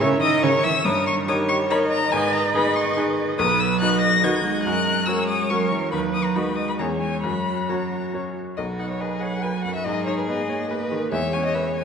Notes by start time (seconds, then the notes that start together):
Already playing: G#2
0.00 C#3 E4 A#4 C#5 E5 C#6
0.20 D#3 D#5 D#6
0.42 C#3 E4 A#4 C#5 C#6
0.63 E3 E5 E6
0.85 G2 D#3 A#4 C#5 D#6
1.07 C#6
1.27 D#3 D#4 G4 A#4 C#5 D#6
1.48 C#6
1.70 D#4 A#4 C#5 D#5 B5
1.91 A#5
2.12 G#2 D#3 B4 G#5
2.32 A#5
2.54 D#3 D#4 G#4 B4 B5
2.76 C#6
2.97 D#4 G#4 B4
3.39 B1 F#3 B4 D#6
3.61 E6
3.81 D#4 F#4 B4 D#5 F#6
4.02 A#6
4.23 D#3 D#4 F#4 B4 D#5 G#6
4.45 G#3
4.63 F#2 A#4 F#6
5.06 C#4 F#4 A#4 C#5 E6
5.28 D#6
5.49 F#3 C#4 F#4 A#4 C#6
5.71 E3
5.92 D#2 F#3 B4 B5
6.14 D#6
6.25 A#5
6.36 G#3 D#4 F#4 B4 D#5 B5
6.56 D#6
6.69 B5
6.79 E2 C#4 G#4 C#5 A#5
7.00 G#5
7.22 F#2 F#3 F#4 C#5 B5
7.69 C#4 F#4 C#5 A#5
8.14 C#4 F#4 C#5
8.57 B1 F#3 F#4 B4 D#5
8.79 D#4 F#5
8.90 C#5
9.01 G#4 B4 D#5
9.21 C#5 F#5
9.42 F#4 B4 G#5
9.64 F#2 F#5
9.75 E5
9.84 G#2 G#4 A#4 D#5
10.06 D#4 C#5
10.18 B4
10.27 B3 G#4 B4 D#5
10.48 A#3 C#5
10.69 B4
10.91 D#3
11.12 E2 G#3 C#5 E5
11.33 C#4 G#5
11.45 D#5
11.54 G#4 B4 E5
11.76 C#5 G#5